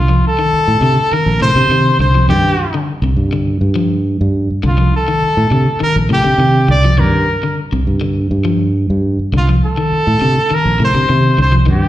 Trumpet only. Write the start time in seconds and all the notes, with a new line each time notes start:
Already playing: F4
0.27 A4
1.12 A#4
1.42 C5
2.00 C5
2.29 G4
4.67 F4
4.96 A4
5.83 A#4
6.13 G4
6.71 D5
6.99 A#4
9.37 F4
9.65 A4
10.54 A#4
10.84 C5
11.42 C5
11.71 G4